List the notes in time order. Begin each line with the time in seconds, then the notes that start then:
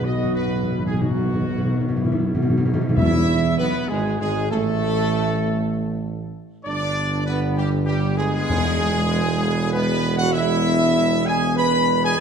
Already playing: B1 F#3 B3
0.02 B2 F#4 D#5
0.09 B2
0.16 B2
0.24 B2
0.31 B2 B4
0.36 B2 F#3 B3
0.47 B2
0.55 B2
0.63 B2
0.71 B2
0.78 B2
0.86 B2 G#4
0.94 B2
1.00 B2 F#3 B3 D#4 F#4
1.10 B2
1.18 B2
1.26 B2
1.34 B2
1.41 B2
1.50 B2
1.58 B2
1.64 B2 D#4
1.73 B2
1.81 B2
1.89 B2
1.97 B2 E4
2.04 B2
2.12 B2
2.19 B2
2.27 B2
2.33 B2 F#4
2.42 B2
2.50 B2
2.57 B2
2.65 B2 D#4
2.74 B2
2.81 B2
2.89 B2
2.95 E2 E4 E5
3.58 B1 B3 B4
3.88 G#1 G#3 G#4
4.19 G#1 G#3 G#4
4.50 A1 A3 A4
6.65 G1 D3 B3 D4 D5
7.26 B3 B4
7.56 G3 G4
7.86 G3 G4
8.17 G#3 G#4
8.48 E1 E2 G#3
9.72 B3 B4
10.17 F#4 F#5
10.32 B3 E4 E5
11.26 G#4 G#5
11.56 B4 B5
12.04 G#4 G#5